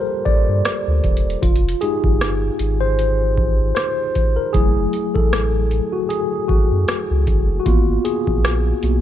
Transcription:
0.00 1.39 G3 medium
0.00 1.39 A#3 medium
0.00 1.40 F4 medium
0.00 1.45 G4 loud
0.00 1.45 A4 medium
0.00 0.27 A#4 medium
0.00 1.45 C5 loud
0.25 0.45 A1 medium
0.25 1.00 D5 loud
0.25 kick medium
0.49 0.62 G2 medium
0.65 cross-stick loud
0.65 closed hi-hat medium
0.88 1.01 D2 medium
1.04 1.37 E1 medium
1.04 kick medium
1.04 closed hi-hat medium
1.17 closed hi-hat medium
1.30 closed hi-hat soft
1.42 1.75 F1 loud
1.42 1.79 F4 medium
1.42 kick loud
1.42 closed hi-hat medium
1.56 closed hi-hat medium
1.69 closed hi-hat soft
1.81 2.95 G#3 soft
1.81 2.95 D#4 medium
1.81 2.95 G4 medium
1.81 2.78 G#4 loud
1.81 closed hi-hat medium
2.04 2.50 G1 medium
2.04 kick loud
2.21 cross-stick loud
2.59 3.73 G#1 medium
2.59 closed hi-hat medium
2.81 3.74 C5 loud
2.99 closed hi-hat medium
3.38 kick medium
3.75 4.39 C5 loud
3.75 cross-stick loud
3.75 closed hi-hat medium
4.15 kick medium
4.15 closed hi-hat medium
4.36 4.52 A#4 medium
4.53 4.87 F#1 loud
4.53 5.67 F#3 medium
4.53 5.68 A3 medium
4.53 5.68 E4 medium
4.53 5.17 G#4 loud
4.53 kick loud
4.53 closed hi-hat medium
4.93 closed hi-hat medium
5.15 5.81 A1 medium
5.15 5.89 A4 medium
5.15 kick loud
5.33 cross-stick loud
5.71 closed hi-hat medium
5.93 6.10 F#4 medium
6.09 6.46 G#4 medium
6.09 closed hi-hat medium
6.48 6.68 G#1 medium
6.48 7.23 F#4 medium
6.48 kick medium
6.72 6.85 F#2 medium
6.88 cross-stick loud
6.88 closed hi-hat medium
7.11 7.29 C#2 loud
7.27 7.60 F#1 medium
7.27 kick medium
7.27 closed hi-hat medium
7.60 7.66 F#4 medium
7.66 7.99 G#1 loud
7.66 8.21 A#3 medium
7.66 8.21 B3 medium
7.66 8.06 F4 loud
7.66 8.21 F#4 medium
7.66 kick loud
7.66 closed hi-hat medium
8.05 9.01 G#4 medium
8.05 closed hi-hat medium
8.27 8.74 A#1 loud
8.27 kick loud
8.45 cross-stick loud
8.83 9.01 B1 loud
8.83 9.01 A#3 soft
8.83 9.01 B3 soft
8.83 9.01 F#4 medium
8.83 closed hi-hat medium

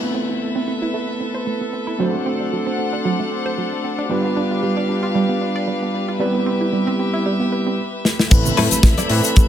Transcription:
0.00 1.96 A3 medium
0.00 1.96 B3 medium
0.00 0.13 B3 medium
0.00 1.97 C4 medium
0.00 1.97 E4 medium
0.00 4.06 A4 medium
0.00 1.97 B4 medium
0.00 1.98 E5 medium
0.15 0.20 C4 loud
0.29 0.36 E4 medium
0.41 0.49 A3 medium
0.56 0.62 C4 medium
0.68 0.76 C4 medium
0.82 0.86 E4 medium
0.94 1.02 A3 loud
1.08 1.18 B3 medium
1.21 1.32 C4 medium
1.34 1.41 C5 medium
1.47 1.55 A3 medium
1.61 1.65 B3 medium
1.73 1.81 C4 medium
1.87 1.91 E4 loud
1.99 2.08 F#3 medium
1.99 4.07 A3 medium
1.99 4.07 C4 medium
1.99 4.07 D4 medium
1.99 6.17 D4 medium
1.99 4.07 F#4 medium
1.99 4.08 C5 medium
1.99 4.08 F#5 medium
2.14 2.24 A3 medium
2.26 2.31 C4 loud
2.41 2.47 D4 medium
2.53 2.60 F#3 medium
2.67 2.73 C4 medium
2.79 2.86 C4 medium
2.93 2.97 D4 medium
3.05 3.13 F#3 loud
3.19 3.29 A3 medium
3.32 3.43 C4 medium
3.46 3.52 C5 medium
3.58 3.66 F#3 medium
3.72 3.76 A3 medium
3.84 3.92 C4 medium
3.98 4.02 D4 loud
4.09 6.17 G3 medium
4.09 4.18 G3 medium
4.09 6.18 B3 medium
4.09 6.18 D4 medium
4.09 6.18 F4 medium
4.09 6.19 G4 medium
4.09 8.27 B4 medium
4.09 6.18 B4 medium
4.09 6.19 F5 medium
4.25 4.35 B3 medium
4.37 4.41 D4 medium
4.51 4.58 F4 medium
4.63 4.71 G3 medium
4.77 4.84 D4 loud
4.89 4.97 D4 medium
5.03 5.07 F4 medium
5.15 5.23 G3 medium
5.29 5.39 B3 medium
5.41 5.53 D4 medium
5.56 5.62 D5 medium
5.68 5.76 G3 medium
5.82 5.86 B3 medium
5.94 6.02 D4 medium
6.08 6.12 F4 loud
6.19 7.78 G3 medium
6.19 6.28 G3 loud
6.19 7.78 B3 medium
6.19 7.78 C4 medium
6.19 7.78 E4 medium
6.19 8.29 G4 medium
6.19 7.79 B4 medium
6.19 8.29 E5 medium
6.35 6.45 B3 medium
6.46 6.51 C4 medium
6.61 6.68 E4 medium
6.73 6.81 G3 medium
6.87 6.94 C4 loud
6.99 7.07 C4 medium
7.14 7.18 E4 medium
7.26 7.34 G3 medium
7.40 7.50 B3 medium
7.52 7.60 B4 medium
7.67 7.73 C4 medium
8.05 snare medium
8.19 snare loud
8.30 8.52 A1 loud
8.30 9.07 A3 medium
8.30 9.07 C4 medium
8.30 9.07 E4 medium
8.30 9.48 A4 medium
8.30 9.08 B4 medium
8.30 9.48 E5 medium
8.30 9.48 B5 medium
8.30 kick loud
8.30 closed hi-hat medium
8.30 crash loud
8.30 shaker medium
8.45 low conga medium
8.45 shaker medium
8.57 8.68 A2 loud
8.57 8.78 C4 loud
8.57 8.78 E4 medium
8.57 8.78 A4 medium
8.57 8.78 B4 loud
8.57 open hi-hat loud
8.57 high conga medium
8.71 8.81 A1 soft
8.71 closed hi-hat medium
8.71 muted conga medium
8.71 shaker medium
8.83 8.94 A1 medium
8.83 kick loud
8.83 snare loud
8.83 closed hi-hat medium
8.83 shaker medium
8.98 9.30 C4 medium
8.98 9.30 E4 medium
8.98 9.30 A4 medium
8.98 9.30 D5 medium
8.98 closed hi-hat medium
8.98 muted conga medium
8.98 high conga medium
8.98 shaker medium
9.09 9.21 A2 medium
9.09 9.48 A3 medium
9.09 9.48 C4 medium
9.09 9.48 E4 medium
9.09 9.48 B4 loud
9.09 cross-stick medium
9.09 open hi-hat loud
9.24 closed hi-hat medium
9.24 shaker medium
9.36 9.48 A1 medium
9.36 kick loud
9.36 closed hi-hat medium
9.36 shaker medium

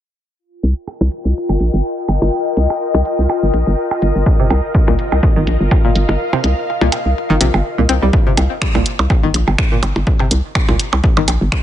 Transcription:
0.39 8.13 F4 medium
0.56 8.13 A#4 medium
0.56 5.12 G5 medium
0.63 0.74 C2 loud
0.63 closed hi-hat medium
0.78 8.13 D#5 medium
0.88 percussion blips soft
1.01 1.09 C2 medium
1.01 percussion blips medium
1.12 closed hi-hat medium
1.25 1.33 C2 medium
1.49 1.58 G1 medium
1.49 percussion blips soft
1.60 1.70 A#1 medium
1.60 closed hi-hat medium
1.74 1.82 G1 loud
2.08 2.19 G1 loud
2.08 closed hi-hat medium
2.08 percussion blips soft
2.22 2.30 G1 loud
2.22 percussion blips medium
2.57 2.67 C2 loud
2.57 closed hi-hat medium
2.70 percussion blips soft
2.94 3.03 C2 medium
2.94 percussion blips medium
3.05 closed hi-hat medium
3.19 3.27 C2 medium
3.29 percussion blips soft
3.43 3.51 G1 medium
3.54 3.64 A#1 medium
3.54 closed hi-hat loud
3.67 3.75 G1 loud
3.91 percussion blips soft
4.02 4.12 G1 loud
4.02 closed hi-hat medium
4.16 4.24 G1 medium
4.26 kick loud
4.40 4.45 C3 medium
4.50 4.61 C2 loud
4.50 closed hi-hat medium
4.50 percussion blips soft
4.75 kick loud
4.88 4.96 C2 medium
4.88 4.93 A#2 medium
4.88 percussion blips medium
4.96 8.13 F5 medium
4.96 closed hi-hat medium
5.12 5.20 C2 medium
5.12 percussion blips soft
5.23 kick loud
5.36 5.45 G1 medium
5.36 5.41 D#3 medium
5.47 5.57 A#1 medium
5.47 closed hi-hat loud
5.61 5.69 G1 loud
5.71 kick loud
5.71 percussion blips soft
5.85 5.90 A#2 medium
5.95 6.06 G1 loud
5.95 closed hi-hat loud
6.09 6.17 G1 loud
6.09 percussion blips medium
6.33 6.38 C3 medium
6.33 percussion blips soft
6.33 percussion blips medium
6.44 6.54 C2 loud
6.44 closed hi-hat medium
6.81 6.90 C2 medium
6.81 6.87 A#2 medium
6.81 percussion blips medium
6.92 closed hi-hat medium
6.92 percussion blips soft
7.06 7.14 C2 medium
7.30 7.38 G1 medium
7.30 7.35 D#3 medium
7.41 7.51 A#1 medium
7.41 7.45 C3 medium
7.41 closed hi-hat medium
7.54 7.62 G1 loud
7.54 percussion blips soft
7.78 7.87 C2 loud
7.78 7.80 A#2 medium
7.89 7.99 C2 medium
7.89 7.92 C4 medium
7.89 closed hi-hat medium
8.02 8.11 C2 loud
8.02 8.08 G3 medium
8.13 kick loud
8.27 8.32 C3 medium
8.37 8.48 C2 loud
8.37 closed hi-hat medium
8.37 percussion blips soft
8.62 finger snap medium
8.62 kick loud
8.75 8.83 C2 medium
8.75 8.80 A#2 medium
8.75 percussion blips soft
8.75 percussion blips loud
8.86 closed hi-hat medium
8.99 9.08 C2 medium
8.99 percussion blips medium
9.10 kick loud
9.10 percussion blips soft
9.23 9.32 G1 medium
9.23 9.29 D#3 medium
9.34 9.45 A#1 medium
9.34 closed hi-hat medium
9.48 9.56 G1 loud
9.48 percussion blips soft
9.58 finger snap loud
9.58 kick loud
9.72 9.77 A#2 medium
9.83 9.93 G1 loud
9.83 closed hi-hat medium
9.83 percussion blips medium
9.83 percussion blips soft
9.96 10.04 G1 loud
9.96 percussion blips medium
10.07 kick loud
10.20 10.25 C3 medium
10.20 percussion blips soft
10.31 10.41 C2 loud
10.31 closed hi-hat loud
10.55 finger snap medium
10.55 kick loud
10.55 percussion blips soft
10.69 10.77 C2 medium
10.69 10.74 A#2 medium
10.69 percussion blips loud
10.79 closed hi-hat medium
10.93 11.01 C2 medium
10.93 percussion blips medium
10.93 percussion blips soft
11.04 kick loud
11.17 11.25 G1 medium
11.17 11.22 D#3 medium
11.17 percussion blips medium
11.28 11.38 A#1 medium
11.28 closed hi-hat loud
11.28 percussion blips soft
11.41 11.50 G1 loud
11.52 finger snap loud
11.52 kick loud

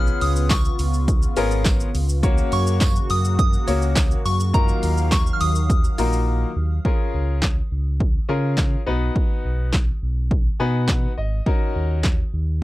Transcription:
0.00 0.11 B1 medium
0.00 4.50 C#3 medium
0.00 0.60 B3 medium
0.00 2.21 B3 medium
0.00 0.60 C#4 medium
0.00 0.60 F4 medium
0.00 2.21 F4 medium
0.00 0.60 G#4 medium
0.00 0.60 B4 medium
0.00 0.22 F6 loud
0.07 shaker soft
0.21 0.68 C#2 loud
0.21 0.51 D#6 loud
0.21 open hi-hat medium
0.21 shaker medium
0.36 shaker medium
0.50 1.91 C#6 medium
0.50 kick loud
0.50 snare loud
0.50 clap loud
0.50 closed hi-hat medium
0.50 tambourine medium
0.50 shaker medium
0.65 shaker medium
0.79 1.26 C#2 medium
0.79 open hi-hat medium
0.79 shaker medium
0.94 shaker medium
1.08 kick loud
1.08 closed hi-hat medium
1.08 shaker medium
1.22 shaker medium
1.37 1.84 G#1 medium
1.37 1.87 B3 medium
1.37 1.87 C#4 medium
1.37 1.87 F4 medium
1.37 1.87 G#4 medium
1.37 1.87 A#4 loud
1.37 open hi-hat medium
1.37 shaker medium
1.51 shaker medium
1.65 kick loud
1.65 snare loud
1.65 clap loud
1.65 closed hi-hat medium
1.65 tambourine medium
1.65 shaker medium
1.80 shaker medium
1.94 2.41 C#2 medium
1.94 open hi-hat medium
1.94 shaker medium
2.09 shaker medium
2.23 2.90 A#3 medium
2.23 4.52 A#3 medium
2.23 2.90 C#4 medium
2.23 2.91 F#4 medium
2.23 4.52 F#4 medium
2.23 2.91 A#4 medium
2.23 2.91 C#5 loud
2.23 kick loud
2.23 closed hi-hat medium
2.23 shaker medium
2.38 shaker soft
2.52 2.99 F#2 loud
2.52 3.12 C#6 loud
2.52 open hi-hat medium
2.52 shaker soft
2.67 shaker medium
2.80 kick loud
2.80 snare loud
2.80 clap loud
2.80 closed hi-hat medium
2.80 tambourine medium
2.80 shaker medium
2.96 shaker medium
3.10 3.57 F#2 medium
3.10 3.38 D#6 loud
3.10 open hi-hat medium
3.10 shaker medium
3.25 shaker medium
3.39 4.28 D#6 loud
3.39 kick loud
3.39 closed hi-hat medium
3.39 shaker medium
3.53 shaker medium
3.67 4.15 C#2 loud
3.67 4.18 A#3 medium
3.67 4.18 C#4 medium
3.67 4.18 F#4 medium
3.67 4.18 A#4 medium
3.67 4.18 C#5 medium
3.67 open hi-hat medium
3.67 shaker medium
3.82 shaker medium
3.96 kick loud
3.96 snare loud
3.96 clap loud
3.96 closed hi-hat medium
3.96 tambourine medium
3.96 shaker medium
4.11 shaker medium
4.25 4.72 F#2 medium
4.25 4.55 C#6 loud
4.25 open hi-hat medium
4.25 shaker medium
4.40 shaker medium
4.54 6.83 D#3 medium
4.54 6.83 F#3 medium
4.54 5.21 A#3 medium
4.54 5.21 D#4 medium
4.54 5.21 F4 medium
4.54 5.21 F#4 medium
4.54 5.21 A#4 medium
4.54 6.83 F5 medium
4.54 5.14 A#5 medium
4.54 kick loud
4.54 closed hi-hat medium
4.54 shaker medium
4.68 shaker soft
4.83 5.30 D#2 loud
4.83 open hi-hat medium
4.83 shaker medium
4.97 shaker medium
5.11 5.34 C#6 medium
5.11 kick loud
5.11 snare loud
5.11 clap loud
5.11 closed hi-hat medium
5.11 tambourine medium
5.11 shaker medium
5.27 shaker medium
5.33 5.40 F6 medium
5.41 5.88 D#2 loud
5.41 6.52 D#6 medium
5.41 open hi-hat medium
5.41 shaker medium
5.55 shaker medium
5.70 kick loud
5.70 closed hi-hat medium
5.70 shaker medium
5.84 shaker medium
5.98 6.45 A#1 medium
5.98 6.49 A#3 medium
5.98 6.49 D#4 medium
5.98 6.49 F4 medium
5.98 6.49 F#4 medium
5.98 6.49 A#4 medium
5.98 open hi-hat medium
5.98 shaker medium
6.13 shaker medium
6.56 6.80 D#2 medium
6.85 7.52 C#4 medium
6.85 7.52 F4 medium
6.85 7.52 G#4 medium
6.85 7.52 A#4 loud
6.85 kick loud
7.14 7.61 C#2 medium
7.42 kick loud
7.42 snare medium
7.42 clap loud
7.71 8.18 C#2 medium
8.00 kick loud
8.29 8.76 C#3 loud
8.29 8.79 C#4 medium
8.29 8.80 F4 medium
8.29 8.80 G#4 medium
8.29 8.80 A#4 medium
8.57 kick loud
8.57 snare medium
8.57 clap loud
8.86 9.10 B1 loud
8.86 9.79 B3 medium
8.86 9.79 D#4 medium
8.86 9.79 F#4 medium
8.86 9.79 B4 loud
9.16 kick loud
9.45 9.91 B1 medium
9.73 kick loud
9.73 snare loud
9.73 clap loud
10.02 10.49 B1 loud
10.31 kick loud
10.60 11.07 B2 loud
10.60 11.10 B3 medium
10.60 11.10 D#4 medium
10.60 11.10 F#4 medium
10.60 11.10 B4 loud
10.60 10.87 G#5 medium
10.88 kick loud
10.88 snare medium
10.88 clap loud
11.18 11.41 G#1 loud
11.18 11.44 D#5 medium
11.46 12.14 C#4 medium
11.46 12.14 D#4 medium
11.46 12.14 F#4 medium
11.46 12.14 A#4 loud
11.46 kick loud
11.75 12.22 D#2 medium
12.04 kick loud
12.04 snare medium
12.04 clap loud
12.33 12.63 D#2 medium

